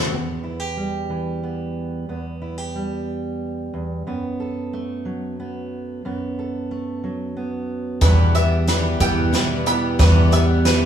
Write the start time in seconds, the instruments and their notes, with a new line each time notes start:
Already playing: twelve-string acoustic guitar A3 C4 F#4, five-string banjo C5 C6
0.12 steel-string acoustic guitar E2 B3
0.43 steel-string acoustic guitar E4
0.60 steel-string acoustic guitar G4
0.77 steel-string acoustic guitar G3
1.10 steel-string acoustic guitar E3
1.43 steel-string acoustic guitar B3
2.09 steel-string acoustic guitar E2 B3
2.42 steel-string acoustic guitar E4
2.58 steel-string acoustic guitar G4
2.75 steel-string acoustic guitar G3
3.74 steel-string acoustic guitar E2
4.07 steel-string acoustic guitar F#2 B3
4.40 steel-string acoustic guitar A4
4.73 steel-string acoustic guitar A3
5.05 steel-string acoustic guitar F#3
5.40 steel-string acoustic guitar B3
6.05 steel-string acoustic guitar F#2 B3
6.39 steel-string acoustic guitar A4
6.71 steel-string acoustic guitar A3
7.04 steel-string acoustic guitar F#3
7.37 steel-string acoustic guitar B3
8.01 twelve-string acoustic guitar E2 B2 E3 G3 B3 G4, upright bass E2, steel-string acoustic guitar E2 G3, five-string banjo B4, kick, snare, closed hi-hat
8.35 twelve-string acoustic guitar E3 G3 B3 G4, steel-string acoustic guitar B3, five-string banjo E5, closed hi-hat
8.68 steel-string acoustic guitar E3, twelve-string acoustic guitar E3 G3 B3 G4, five-string banjo B4, snare, closed hi-hat
9.00 upright bass E2, twelve-string acoustic guitar E2 B2 E3 G3 B3 G4, steel-string acoustic guitar G3, five-string banjo G5, kick, closed hi-hat
9.33 steel-string acoustic guitar B2, twelve-string acoustic guitar E3 G3 B3 G4, five-string banjo B4, snare, closed hi-hat
9.66 twelve-string acoustic guitar E3 G3 B3 G4, steel-string acoustic guitar B3, five-string banjo B5, closed hi-hat
9.99 twelve-string acoustic guitar E2 B2 E3 G3 B3 G4, steel-string acoustic guitar E2 G3, upright bass E2, five-string banjo B4, kick, snare, closed hi-hat
10.31 twelve-string acoustic guitar E3 G3 B3 G4, steel-string acoustic guitar B3, five-string banjo E5, closed hi-hat
10.65 twelve-string acoustic guitar E3 G3 B3 G4, steel-string acoustic guitar E3, five-string banjo B4, snare, closed hi-hat